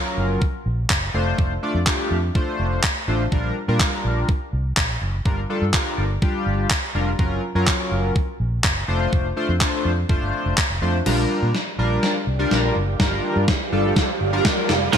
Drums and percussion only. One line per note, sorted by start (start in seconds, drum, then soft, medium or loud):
0.42 kick loud
0.90 kick loud
0.90 clap loud
1.38 kick loud
1.87 kick loud
1.87 clap loud
2.35 kick loud
2.83 kick loud
2.83 clap loud
3.32 kick loud
3.80 kick loud
3.80 clap loud
4.29 kick loud
4.77 kick loud
4.77 clap loud
5.25 kick loud
5.74 kick loud
5.74 clap loud
6.22 kick loud
6.70 kick loud
6.70 clap loud
7.19 kick loud
7.67 kick loud
7.67 clap loud
8.16 kick loud
8.64 kick loud
8.64 clap loud
9.13 kick loud
9.61 kick loud
9.61 clap loud
10.09 kick loud
10.58 kick loud
10.58 clap loud
11.06 snare soft
11.06 crash medium
11.55 snare medium
12.03 snare medium
12.51 snare medium
13.00 kick loud
13.00 snare medium
13.48 kick loud
13.48 snare medium
13.96 kick loud
13.96 snare medium
14.45 kick loud
14.45 snare medium
14.69 snare medium
14.93 kick loud
14.93 snare medium
14.93 closed hi-hat medium